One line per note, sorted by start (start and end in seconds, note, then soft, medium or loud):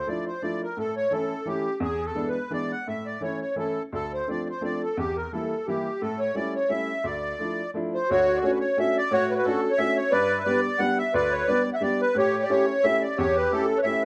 0.07 0.26 F3 soft
0.07 0.26 A3 soft
0.07 0.27 D4 soft
0.07 0.26 E4 soft
0.07 0.25 D5 medium
0.27 0.43 C5 medium
0.42 0.61 F3 medium
0.42 0.61 A3 soft
0.42 0.62 D4 soft
0.42 0.62 E4 soft
0.42 0.62 D5 medium
0.63 0.78 A#4 medium
0.77 1.03 A2 medium
0.77 0.95 A4 medium
0.97 1.13 C#5 medium
1.11 1.30 E3 soft
1.11 1.31 A3 soft
1.11 1.31 C#4 soft
1.11 1.31 E4 medium
1.11 1.48 A4 medium
1.46 1.65 E3 soft
1.46 1.65 A3 soft
1.46 1.66 C#4 soft
1.46 1.66 E4 medium
1.46 1.79 G4 medium
1.80 2.07 E2 medium
1.80 2.06 G#4 medium
2.06 2.29 A4 medium
2.15 2.35 E3 soft
2.15 2.35 G#3 soft
2.15 2.35 B3 soft
2.15 2.35 D4 medium
2.29 2.52 B4 medium
2.50 2.70 E3 medium
2.50 2.70 G#3 soft
2.50 2.70 B3 soft
2.50 2.71 D4 medium
2.50 2.72 D5 medium
2.72 2.87 F#5 medium
2.88 3.14 A2 medium
2.88 3.07 E5 medium
3.06 3.22 D5 medium
3.21 3.40 E3 soft
3.21 3.41 A3 soft
3.21 3.41 C#4 soft
3.21 3.41 E4 soft
3.21 3.40 C#5 medium
3.42 3.56 C#5 medium
3.56 3.75 E3 soft
3.56 3.76 A3 soft
3.56 3.76 C#4 soft
3.56 3.76 E4 medium
3.56 3.83 A4 medium
3.92 4.19 D2 medium
3.92 4.13 A4 medium
4.14 4.28 C5 medium
4.28 4.46 F3 soft
4.28 4.46 A3 soft
4.28 4.46 C4 soft
4.28 4.47 D4 soft
4.28 4.48 D5 medium
4.50 4.62 C5 medium
4.61 4.80 F3 soft
4.61 4.80 A3 soft
4.61 4.80 C4 soft
4.61 4.81 D4 medium
4.61 4.82 D5 medium
4.83 4.98 A4 medium
4.97 5.23 E2 medium
4.97 5.17 G4 medium
5.17 5.32 A#4 medium
5.32 5.51 E3 soft
5.32 5.51 G3 soft
5.32 5.51 A#3 soft
5.32 5.51 E4 medium
5.32 5.67 A4 medium
5.67 5.85 E3 medium
5.67 5.85 G3 soft
5.67 5.86 A#3 soft
5.67 5.86 E4 medium
5.67 6.02 G4 medium
6.02 6.27 A2 medium
6.02 6.20 A4 medium
6.19 6.35 C#5 medium
6.35 6.54 G3 medium
6.35 6.54 A3 soft
6.35 6.54 C#4 soft
6.35 6.54 E4 medium
6.35 6.54 D5 medium
6.55 6.71 C#5 medium
6.69 6.88 G3 soft
6.69 6.89 A3 soft
6.69 6.88 C#4 soft
6.69 6.89 E4 medium
6.69 7.06 E5 medium
7.04 7.31 D2 medium
7.04 7.71 D5 medium
7.39 7.58 F3 soft
7.39 7.58 A3 soft
7.39 7.59 D4 soft
7.39 7.59 E4 soft
7.74 7.93 F3 medium
7.74 7.93 A3 soft
7.74 7.94 D4 medium
7.74 7.94 E4 medium
7.94 8.10 C5 medium
8.10 8.36 D2 medium
8.10 8.58 F#4 medium
8.10 8.37 C#5 medium
8.36 8.40 D5 medium
8.42 8.61 A3 medium
8.42 8.62 C#4 medium
8.42 8.62 D4 medium
8.42 8.62 F#4 medium
8.42 8.51 C#5 medium
8.51 8.59 B4 medium
8.60 8.79 C#5 medium
8.77 8.96 A3 medium
8.77 8.96 C#4 medium
8.77 8.96 D4 medium
8.77 8.97 F#4 medium
8.77 8.98 E5 medium
8.98 9.13 D5 loud
9.11 9.37 A2 medium
9.11 9.61 F#4 medium
9.11 9.31 C#5 loud
9.31 9.34 B4 medium
9.31 9.38 C#5 medium
9.38 9.46 B4 medium
9.45 9.64 A3 medium
9.45 9.64 C#4 medium
9.45 9.64 D4 medium
9.45 9.65 F#4 medium
9.45 9.72 A4 medium
9.71 9.79 C#5 medium
9.78 9.97 A3 medium
9.78 9.97 C#4 medium
9.78 9.97 D4 soft
9.78 9.97 F#4 medium
9.78 9.97 E5 loud
9.97 10.13 C#5 medium
10.11 10.38 G2 medium
10.11 10.60 B4 medium
10.11 10.39 D5 loud
10.39 10.42 E5 medium
10.45 10.64 G3 medium
10.45 10.64 B3 medium
10.45 10.65 D4 medium
10.45 10.65 G4 medium
10.45 10.80 D5 loud
10.79 10.98 G3 medium
10.79 10.98 B3 medium
10.79 10.98 D4 medium
10.79 10.99 G4 medium
10.79 10.98 F#5 loud
10.98 11.14 E5 loud
11.14 11.40 D2 medium
11.14 11.63 B4 medium
11.14 11.33 D5 loud
11.32 11.48 C#5 medium
11.48 11.66 G3 medium
11.48 11.66 B3 medium
11.48 11.67 D4 soft
11.48 11.67 G4 medium
11.48 11.70 D5 medium
11.73 11.82 E5 medium
11.73 11.75 F#5 medium
11.81 12.00 G3 medium
11.81 12.00 B3 medium
11.81 12.00 D4 soft
11.81 12.00 G4 medium
11.81 12.01 D5 medium
12.01 12.17 B4 medium
12.15 12.41 A2 medium
12.15 12.66 G4 medium
12.15 12.44 C#5 loud
12.43 12.51 D5 medium
12.49 12.68 A3 soft
12.49 12.68 C#4 medium
12.49 12.68 E4 soft
12.49 12.69 G4 medium
12.49 12.85 C#5 medium
12.83 13.02 A3 medium
12.83 13.03 C#4 medium
12.83 13.03 E4 medium
12.83 13.03 G4 medium
12.83 13.03 E5 loud
13.02 13.18 D5 medium
13.17 13.44 E2 medium
13.17 13.66 G4 medium
13.17 13.36 C#5 medium
13.36 13.52 B4 medium
13.51 13.69 A3 medium
13.51 13.70 C#4 medium
13.51 13.70 E4 medium
13.51 13.70 G4 medium
13.51 13.78 A4 medium
13.78 13.81 B4 medium
13.78 13.80 C#5 medium
13.78 13.85 C#5 medium
13.83 14.03 A3 medium
13.83 14.03 C#4 medium
13.83 14.03 E4 medium
13.83 14.04 G4 medium
13.83 14.03 E5 loud